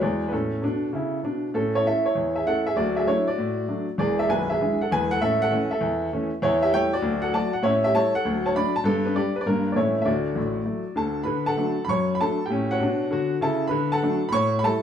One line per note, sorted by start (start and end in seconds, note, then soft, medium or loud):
0.01 0.27 E2 medium
0.01 0.03 G#3 soft
0.01 0.20 G#3 soft
0.01 0.19 B3 soft
0.01 0.19 F#4 soft
0.01 0.27 D5 medium
0.28 0.56 A2 medium
0.28 0.33 B4 medium
0.33 0.57 C#4 medium
0.33 1.24 A4 medium
0.62 0.87 B2 medium
0.62 0.88 D4 medium
0.93 1.17 C#3 medium
0.93 1.19 E4 medium
1.23 1.48 B2 soft
1.23 1.49 D4 medium
1.54 1.80 A2 medium
1.54 1.73 C#4 medium
1.54 1.74 A4 medium
1.75 1.85 E4 medium
1.75 1.85 C#5 medium
1.86 2.02 A3 soft
1.86 2.03 C#4 soft
1.86 2.03 E4 medium
1.86 2.05 A4 medium
1.86 2.06 E5 medium
2.06 2.34 E4 medium
2.06 2.35 C#5 medium
2.15 2.41 E2 medium
2.36 2.46 G#4 soft
2.36 2.46 E5 medium
2.46 2.62 A3 soft
2.46 2.63 C#4 soft
2.46 2.63 E4 soft
2.46 2.65 A4 medium
2.46 2.66 F#5 medium
2.67 2.76 G#4 medium
2.67 2.76 E5 medium
2.76 3.02 D2 medium
2.76 2.94 F#3 soft
2.76 2.96 F#4 medium
2.76 2.96 D5 medium
2.96 3.07 G#4 medium
2.96 3.07 E5 medium
3.06 3.23 F#3 soft
3.06 3.24 A3 soft
3.06 3.24 D4 soft
3.06 3.26 E4 medium
3.06 3.27 C#5 medium
3.28 3.85 F#4 medium
3.28 3.88 D5 medium
3.38 3.63 A2 medium
3.68 3.85 F#3 soft
3.68 3.85 A3 soft
3.68 3.85 D4 soft
3.98 4.22 E1 medium
3.98 4.22 E2 medium
3.98 4.17 G#4 medium
3.98 4.18 D5 medium
4.19 4.29 G#4 medium
4.19 4.29 E5 medium
4.29 4.53 B0 medium
4.29 4.53 B1 medium
4.29 4.48 B4 medium
4.29 4.49 G#5 medium
4.50 4.78 G#4 medium
4.50 4.79 E5 medium
4.61 4.77 E3 soft
4.61 4.77 G#3 soft
4.61 4.77 D4 soft
4.81 4.90 A4 medium
4.81 4.91 F#5 medium
4.91 5.15 E1 medium
4.91 5.15 E2 medium
4.91 5.10 B4 medium
4.91 5.11 G#5 loud
5.11 5.21 A4 medium
5.11 5.21 F#5 loud
5.21 5.46 A2 medium
5.21 5.38 C#4 soft
5.21 5.40 A4 medium
5.21 5.40 E5 medium
5.42 5.70 A4 medium
5.42 5.71 F#5 medium
5.51 5.68 E3 soft
5.51 5.68 A3 soft
5.51 5.68 C#4 medium
5.71 6.28 A4 medium
5.71 6.31 E5 medium
5.81 6.06 E2 medium
6.13 6.29 E3 medium
6.13 6.29 A3 medium
6.13 6.29 C#4 medium
6.42 6.68 E2 medium
6.42 6.61 E4 medium
6.42 6.62 C#5 medium
6.62 6.72 G4 medium
6.62 6.72 E5 medium
6.72 6.89 G3 soft
6.72 6.89 A3 soft
6.72 6.89 E4 medium
6.72 6.92 C#5 medium
6.72 6.93 G5 loud
6.93 7.21 F#4 medium
6.93 7.23 D5 medium
7.02 7.28 D2 medium
7.02 7.20 F#3 soft
7.22 7.32 A4 medium
7.22 7.33 F#5 medium
7.33 7.49 F#3 soft
7.33 7.50 A3 soft
7.33 7.50 F#4 medium
7.33 7.53 D5 medium
7.33 7.54 A5 medium
7.53 7.63 F#5 medium
7.62 7.89 A2 medium
7.62 7.81 C#4 medium
7.62 7.83 E4 medium
7.62 7.83 C#5 medium
7.84 7.94 G4 medium
7.84 7.94 E5 medium
7.94 8.10 G3 soft
7.94 8.11 A3 medium
7.94 8.11 E4 soft
7.94 8.13 C#5 medium
7.94 8.14 A5 loud
8.15 8.43 A4 medium
8.15 8.45 F#5 medium
8.25 8.50 D2 medium
8.25 8.43 F#3 medium
8.46 8.55 C#5 medium
8.46 8.55 A5 medium
8.55 8.71 F#3 soft
8.55 8.72 A3 soft
8.55 8.72 D4 medium
8.55 8.75 D5 medium
8.55 8.75 B5 medium
8.76 8.85 A5 medium
8.84 9.10 G2 medium
8.84 9.02 B3 medium
8.84 9.04 D4 medium
8.84 9.05 A4 medium
9.05 9.14 D4 medium
9.05 9.16 B4 medium
9.15 9.32 G3 soft
9.15 9.32 D4 medium
9.15 9.35 G4 medium
9.15 9.35 D5 medium
9.36 9.41 B4 medium
9.41 9.46 D5 medium
9.46 9.72 G2 medium
9.46 9.63 G3 soft
9.46 9.64 A#3 soft
9.46 9.70 D4 medium
9.46 9.71 A#4 medium
9.72 10.02 A2 medium
9.72 9.92 E3 soft
9.72 9.93 A3 soft
9.72 9.77 D5 medium
9.76 9.94 C#4 soft
9.76 10.00 E4 medium
9.76 10.01 C#5 medium
10.02 10.30 D2 medium
10.02 10.30 D3 medium
10.02 10.97 D5 medium
10.02 10.07 E5 medium
10.07 10.94 F#4 medium
10.35 10.60 A1 medium
10.35 10.60 A2 medium
10.65 10.83 F#3 soft
10.65 10.83 A3 soft
10.96 11.21 D2 medium
10.96 11.21 D3 medium
10.96 11.21 A4 medium
10.96 11.22 A5 medium
11.23 11.53 D3 medium
11.23 11.47 B4 medium
11.23 11.48 B5 medium
11.46 11.81 A4 medium
11.46 11.81 F#5 medium
11.46 11.83 A5 medium
11.57 11.74 F#3 soft
11.57 11.74 A3 soft
11.57 11.75 D4 soft
11.85 12.14 F#2 medium
11.85 11.89 B5 medium
11.89 12.13 C#5 medium
11.89 12.14 C#6 medium
12.15 12.20 B5 medium
12.20 12.37 F#3 soft
12.20 12.36 A3 soft
12.20 12.37 D4 soft
12.20 12.44 A4 medium
12.20 12.45 A5 medium
12.46 12.69 G4 soft
12.46 12.70 G5 medium
12.50 12.74 A2 medium
12.50 12.75 C#4 medium
12.71 13.11 F#4 medium
12.71 13.28 C#5 medium
12.71 13.31 F#5 medium
12.80 13.04 B2 medium
12.80 13.06 D4 medium
13.11 13.35 D3 medium
13.11 13.36 F#4 medium
13.41 13.65 C#3 medium
13.41 13.66 E4 medium
13.41 13.65 A4 medium
13.41 13.66 A5 medium
13.68 13.97 D3 medium
13.68 13.91 B4 medium
13.68 13.92 B5 medium
13.92 14.25 A4 medium
13.92 14.25 F#5 medium
13.92 14.27 A5 loud
14.03 14.19 F#3 medium
14.03 14.19 A3 medium
14.03 14.19 D4 medium
14.29 14.58 A2 medium
14.29 14.33 B5 medium
14.29 14.57 C#6 loud
14.34 14.56 C#5 medium
14.59 14.63 B5 medium
14.63 14.80 G3 soft
14.63 14.80 A3 soft
14.63 14.80 E4 medium
14.63 14.82 A4 medium
14.63 14.82 A5 loud